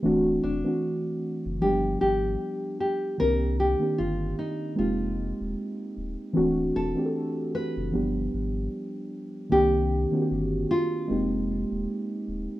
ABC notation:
X:1
M:4/4
L:1/16
Q:"Swing 16ths" 1/4=76
K:Cm
V:1 name="Nylon-string guitar"
z2 D6 G2 G4 G2 | B2 G2 F2 E2 F6 z2 | z2 =A4 =B8 z2 | G6 F8 z2 |]
V:2 name="Synth keys"
[=E,=A,CD^F]2 z [E,A,CDF]3 z2 [=F,G,_A,=B,DG]4- [F,G,A,B,DG] z3 | [E,B,CDG]2 z [E,B,CDG]3 z2 [A,B,CEG]4- [A,B,CEG] z3 | [=E,=A,CD^F]2 z [E,A,CDG=A]3 z2 [=F,G,=B,DG]4- [F,G,B,DG] z3 | [E,B,CDG]2 z [E,B,CD^FG]3 z2 [A,B,CEG]4- [A,B,CEG] z3 |]
V:3 name="Sub bass" clef=bass
D,,,2 =E,,, z4 ^F,,, G,,,2 A,,,2 z4 | C,,3 z G,,,2 z2 F,,,3 E,,, z2 D,,, z | D,,,2 =E,,, z4 ^F,,, G,,,2 A,,,2 z4 | C,,3 z G,,,2 z2 F,,,3 E,,, z2 D,,, z |]